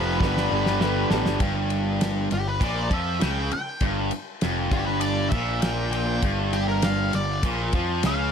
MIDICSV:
0, 0, Header, 1, 9, 480
1, 0, Start_track
1, 0, Tempo, 601805
1, 1129, Time_signature, 4, 2, 24, 8
1, 6634, End_track
2, 0, Start_track
2, 0, Title_t, "Lead electric guitar"
2, 0, Program_c, 0, 29
2, 0, Note_on_c, 0, 71, 94
2, 865, Note_off_c, 0, 71, 0
2, 1858, Note_on_c, 0, 67, 91
2, 1970, Note_off_c, 0, 67, 0
2, 1975, Note_on_c, 0, 71, 74
2, 2106, Note_off_c, 0, 71, 0
2, 2106, Note_on_c, 0, 74, 84
2, 2331, Note_off_c, 0, 74, 0
2, 2343, Note_on_c, 0, 76, 86
2, 2567, Note_off_c, 0, 76, 0
2, 2570, Note_on_c, 0, 79, 79
2, 2803, Note_off_c, 0, 79, 0
2, 2813, Note_on_c, 0, 79, 85
2, 3045, Note_off_c, 0, 79, 0
2, 3771, Note_on_c, 0, 67, 86
2, 3873, Note_off_c, 0, 67, 0
2, 3877, Note_on_c, 0, 71, 72
2, 3988, Note_off_c, 0, 71, 0
2, 3988, Note_on_c, 0, 74, 93
2, 4220, Note_on_c, 0, 76, 82
2, 4233, Note_off_c, 0, 74, 0
2, 4469, Note_off_c, 0, 76, 0
2, 4478, Note_on_c, 0, 79, 74
2, 4706, Note_off_c, 0, 79, 0
2, 4715, Note_on_c, 0, 79, 91
2, 4957, Note_off_c, 0, 79, 0
2, 5210, Note_on_c, 0, 67, 84
2, 5327, Note_off_c, 0, 67, 0
2, 5330, Note_on_c, 0, 70, 94
2, 5448, Note_off_c, 0, 70, 0
2, 5457, Note_on_c, 0, 77, 92
2, 5688, Note_off_c, 0, 77, 0
2, 5702, Note_on_c, 0, 74, 89
2, 5931, Note_off_c, 0, 74, 0
2, 6432, Note_on_c, 0, 77, 111
2, 6634, Note_off_c, 0, 77, 0
2, 6634, End_track
3, 0, Start_track
3, 0, Title_t, "Upright piano"
3, 0, Program_c, 1, 0
3, 0, Note_on_c, 1, 60, 75
3, 0, Note_on_c, 1, 65, 65
3, 0, Note_on_c, 1, 67, 70
3, 0, Note_on_c, 1, 72, 83
3, 120, Note_off_c, 1, 60, 0
3, 124, Note_off_c, 1, 65, 0
3, 124, Note_off_c, 1, 67, 0
3, 128, Note_off_c, 1, 72, 0
3, 167, Note_on_c, 1, 59, 106
3, 176, Note_on_c, 1, 62, 100
3, 177, Note_on_c, 1, 67, 96
3, 185, Note_on_c, 1, 71, 110
3, 360, Note_off_c, 1, 59, 0
3, 365, Note_off_c, 1, 62, 0
3, 365, Note_off_c, 1, 67, 0
3, 369, Note_off_c, 1, 71, 0
3, 411, Note_on_c, 1, 59, 71
3, 415, Note_on_c, 1, 62, 66
3, 420, Note_on_c, 1, 67, 72
3, 426, Note_on_c, 1, 71, 78
3, 602, Note_off_c, 1, 59, 0
3, 604, Note_off_c, 1, 62, 0
3, 607, Note_off_c, 1, 67, 0
3, 609, Note_off_c, 1, 71, 0
3, 657, Note_on_c, 1, 59, 77
3, 661, Note_on_c, 1, 62, 71
3, 665, Note_on_c, 1, 67, 74
3, 673, Note_on_c, 1, 71, 88
3, 845, Note_off_c, 1, 59, 0
3, 847, Note_off_c, 1, 62, 0
3, 849, Note_off_c, 1, 67, 0
3, 853, Note_off_c, 1, 71, 0
3, 886, Note_on_c, 1, 59, 98
3, 893, Note_on_c, 1, 62, 87
3, 895, Note_on_c, 1, 67, 84
3, 903, Note_on_c, 1, 71, 113
3, 1079, Note_off_c, 1, 59, 0
3, 1083, Note_off_c, 1, 62, 0
3, 1084, Note_off_c, 1, 67, 0
3, 1088, Note_off_c, 1, 71, 0
3, 6634, End_track
4, 0, Start_track
4, 0, Title_t, "Overdriven electric guitar"
4, 0, Program_c, 2, 29
4, 0, Note_on_c, 2, 53, 93
4, 0, Note_on_c, 2, 60, 83
4, 0, Note_on_c, 2, 65, 85
4, 0, Note_on_c, 2, 69, 94
4, 152, Note_off_c, 2, 53, 0
4, 157, Note_off_c, 2, 60, 0
4, 159, Note_off_c, 2, 65, 0
4, 159, Note_on_c, 2, 55, 88
4, 164, Note_off_c, 2, 69, 0
4, 166, Note_on_c, 2, 59, 91
4, 172, Note_on_c, 2, 62, 93
4, 180, Note_on_c, 2, 67, 106
4, 1109, Note_off_c, 2, 55, 0
4, 1113, Note_off_c, 2, 59, 0
4, 1115, Note_off_c, 2, 62, 0
4, 1119, Note_off_c, 2, 67, 0
4, 6634, End_track
5, 0, Start_track
5, 0, Title_t, "Overdriven electric guitar"
5, 0, Program_c, 3, 29
5, 0, Note_on_c, 3, 41, 97
5, 0, Note_on_c, 3, 48, 91
5, 0, Note_on_c, 3, 53, 99
5, 151, Note_off_c, 3, 41, 0
5, 154, Note_off_c, 3, 48, 0
5, 155, Note_off_c, 3, 53, 0
5, 170, Note_on_c, 3, 43, 90
5, 173, Note_on_c, 3, 50, 97
5, 177, Note_on_c, 3, 55, 97
5, 393, Note_off_c, 3, 43, 0
5, 399, Note_off_c, 3, 50, 0
5, 402, Note_on_c, 3, 43, 89
5, 406, Note_off_c, 3, 55, 0
5, 408, Note_on_c, 3, 50, 100
5, 415, Note_on_c, 3, 55, 107
5, 628, Note_off_c, 3, 43, 0
5, 633, Note_off_c, 3, 50, 0
5, 638, Note_on_c, 3, 43, 118
5, 643, Note_on_c, 3, 50, 116
5, 644, Note_off_c, 3, 55, 0
5, 653, Note_on_c, 3, 55, 115
5, 870, Note_off_c, 3, 43, 0
5, 870, Note_off_c, 3, 50, 0
5, 876, Note_off_c, 3, 55, 0
5, 880, Note_on_c, 3, 43, 70
5, 880, Note_on_c, 3, 50, 82
5, 886, Note_on_c, 3, 55, 82
5, 1110, Note_off_c, 3, 43, 0
5, 1110, Note_off_c, 3, 50, 0
5, 1113, Note_off_c, 3, 55, 0
5, 1125, Note_on_c, 3, 43, 92
5, 1830, Note_off_c, 3, 43, 0
5, 1839, Note_on_c, 3, 43, 71
5, 2036, Note_off_c, 3, 43, 0
5, 2078, Note_on_c, 3, 46, 87
5, 2315, Note_off_c, 3, 46, 0
5, 2318, Note_on_c, 3, 53, 99
5, 2552, Note_off_c, 3, 53, 0
5, 2555, Note_on_c, 3, 49, 104
5, 2796, Note_off_c, 3, 49, 0
5, 3044, Note_on_c, 3, 43, 95
5, 3281, Note_off_c, 3, 43, 0
5, 3533, Note_on_c, 3, 41, 101
5, 3762, Note_off_c, 3, 41, 0
5, 3766, Note_on_c, 3, 43, 109
5, 4242, Note_off_c, 3, 43, 0
5, 4259, Note_on_c, 3, 46, 100
5, 4969, Note_off_c, 3, 46, 0
5, 4970, Note_on_c, 3, 43, 95
5, 5685, Note_off_c, 3, 43, 0
5, 5703, Note_on_c, 3, 43, 76
5, 5890, Note_off_c, 3, 43, 0
5, 5949, Note_on_c, 3, 46, 106
5, 6174, Note_off_c, 3, 46, 0
5, 6184, Note_on_c, 3, 53, 85
5, 6412, Note_off_c, 3, 53, 0
5, 6419, Note_on_c, 3, 49, 113
5, 6634, Note_off_c, 3, 49, 0
5, 6634, End_track
6, 0, Start_track
6, 0, Title_t, "Picked electric bass"
6, 0, Program_c, 4, 34
6, 0, Note_on_c, 4, 29, 82
6, 166, Note_off_c, 4, 29, 0
6, 166, Note_on_c, 4, 31, 96
6, 378, Note_off_c, 4, 31, 0
6, 414, Note_on_c, 4, 31, 93
6, 832, Note_off_c, 4, 31, 0
6, 887, Note_on_c, 4, 33, 87
6, 996, Note_off_c, 4, 33, 0
6, 1012, Note_on_c, 4, 31, 82
6, 1114, Note_off_c, 4, 31, 0
6, 1119, Note_on_c, 4, 31, 91
6, 1812, Note_off_c, 4, 31, 0
6, 1852, Note_on_c, 4, 31, 70
6, 2074, Note_off_c, 4, 31, 0
6, 2082, Note_on_c, 4, 34, 87
6, 2309, Note_off_c, 4, 34, 0
6, 2319, Note_on_c, 4, 41, 83
6, 2547, Note_off_c, 4, 41, 0
6, 2575, Note_on_c, 4, 37, 85
6, 2796, Note_off_c, 4, 37, 0
6, 3044, Note_on_c, 4, 31, 88
6, 3271, Note_off_c, 4, 31, 0
6, 3535, Note_on_c, 4, 29, 96
6, 3757, Note_off_c, 4, 29, 0
6, 3762, Note_on_c, 4, 31, 80
6, 4216, Note_off_c, 4, 31, 0
6, 4242, Note_on_c, 4, 34, 96
6, 4936, Note_off_c, 4, 34, 0
6, 4970, Note_on_c, 4, 31, 96
6, 5660, Note_off_c, 4, 31, 0
6, 5697, Note_on_c, 4, 31, 70
6, 5919, Note_off_c, 4, 31, 0
6, 5931, Note_on_c, 4, 34, 97
6, 6155, Note_off_c, 4, 34, 0
6, 6169, Note_on_c, 4, 41, 89
6, 6394, Note_off_c, 4, 41, 0
6, 6415, Note_on_c, 4, 37, 86
6, 6634, Note_off_c, 4, 37, 0
6, 6634, End_track
7, 0, Start_track
7, 0, Title_t, "Muted overdriven electric guitar strokes"
7, 2807, Note_on_c, 9, 29, 49
7, 2887, Note_off_c, 9, 29, 0
7, 6634, End_track
8, 0, Start_track
8, 0, Title_t, "Muted picked electric bass strokes"
8, 2814, Note_on_c, 9, 29, 40
8, 2894, Note_off_c, 9, 29, 0
8, 6634, End_track
9, 0, Start_track
9, 0, Title_t, "Drums"
9, 164, Note_on_c, 9, 36, 101
9, 177, Note_on_c, 9, 38, 80
9, 243, Note_off_c, 9, 36, 0
9, 257, Note_off_c, 9, 38, 0
9, 295, Note_on_c, 9, 38, 68
9, 375, Note_off_c, 9, 38, 0
9, 529, Note_on_c, 9, 38, 74
9, 609, Note_off_c, 9, 38, 0
9, 646, Note_on_c, 9, 38, 93
9, 726, Note_off_c, 9, 38, 0
9, 882, Note_on_c, 9, 38, 100
9, 962, Note_off_c, 9, 38, 0
9, 1003, Note_on_c, 9, 38, 92
9, 1082, Note_off_c, 9, 38, 0
9, 1117, Note_on_c, 9, 51, 83
9, 1118, Note_on_c, 9, 36, 98
9, 1197, Note_off_c, 9, 51, 0
9, 1198, Note_off_c, 9, 36, 0
9, 1358, Note_on_c, 9, 51, 71
9, 1437, Note_off_c, 9, 51, 0
9, 1603, Note_on_c, 9, 51, 94
9, 1609, Note_on_c, 9, 38, 100
9, 1683, Note_off_c, 9, 51, 0
9, 1689, Note_off_c, 9, 38, 0
9, 1841, Note_on_c, 9, 51, 70
9, 1921, Note_off_c, 9, 51, 0
9, 2081, Note_on_c, 9, 36, 123
9, 2085, Note_on_c, 9, 51, 91
9, 2161, Note_off_c, 9, 36, 0
9, 2165, Note_off_c, 9, 51, 0
9, 2320, Note_on_c, 9, 36, 106
9, 2324, Note_on_c, 9, 51, 64
9, 2400, Note_off_c, 9, 36, 0
9, 2404, Note_off_c, 9, 51, 0
9, 2562, Note_on_c, 9, 51, 90
9, 2569, Note_on_c, 9, 38, 111
9, 2642, Note_off_c, 9, 51, 0
9, 2649, Note_off_c, 9, 38, 0
9, 2803, Note_on_c, 9, 51, 67
9, 2883, Note_off_c, 9, 51, 0
9, 3035, Note_on_c, 9, 51, 73
9, 3039, Note_on_c, 9, 36, 88
9, 3115, Note_off_c, 9, 51, 0
9, 3119, Note_off_c, 9, 36, 0
9, 3277, Note_on_c, 9, 51, 72
9, 3356, Note_off_c, 9, 51, 0
9, 3519, Note_on_c, 9, 51, 83
9, 3526, Note_on_c, 9, 38, 112
9, 3599, Note_off_c, 9, 51, 0
9, 3605, Note_off_c, 9, 38, 0
9, 3760, Note_on_c, 9, 36, 111
9, 3760, Note_on_c, 9, 51, 72
9, 3839, Note_off_c, 9, 51, 0
9, 3840, Note_off_c, 9, 36, 0
9, 3994, Note_on_c, 9, 51, 98
9, 4074, Note_off_c, 9, 51, 0
9, 4240, Note_on_c, 9, 51, 71
9, 4242, Note_on_c, 9, 36, 108
9, 4320, Note_off_c, 9, 51, 0
9, 4322, Note_off_c, 9, 36, 0
9, 4483, Note_on_c, 9, 51, 98
9, 4489, Note_on_c, 9, 38, 107
9, 4563, Note_off_c, 9, 51, 0
9, 4569, Note_off_c, 9, 38, 0
9, 4727, Note_on_c, 9, 51, 73
9, 4806, Note_off_c, 9, 51, 0
9, 4964, Note_on_c, 9, 51, 85
9, 4966, Note_on_c, 9, 36, 90
9, 5044, Note_off_c, 9, 51, 0
9, 5045, Note_off_c, 9, 36, 0
9, 5208, Note_on_c, 9, 51, 74
9, 5288, Note_off_c, 9, 51, 0
9, 5442, Note_on_c, 9, 51, 99
9, 5448, Note_on_c, 9, 38, 110
9, 5521, Note_off_c, 9, 51, 0
9, 5528, Note_off_c, 9, 38, 0
9, 5687, Note_on_c, 9, 51, 82
9, 5767, Note_off_c, 9, 51, 0
9, 5926, Note_on_c, 9, 51, 110
9, 5927, Note_on_c, 9, 36, 114
9, 6006, Note_off_c, 9, 51, 0
9, 6007, Note_off_c, 9, 36, 0
9, 6163, Note_on_c, 9, 51, 67
9, 6168, Note_on_c, 9, 36, 99
9, 6243, Note_off_c, 9, 51, 0
9, 6247, Note_off_c, 9, 36, 0
9, 6404, Note_on_c, 9, 51, 99
9, 6411, Note_on_c, 9, 38, 102
9, 6484, Note_off_c, 9, 51, 0
9, 6490, Note_off_c, 9, 38, 0
9, 6634, End_track
0, 0, End_of_file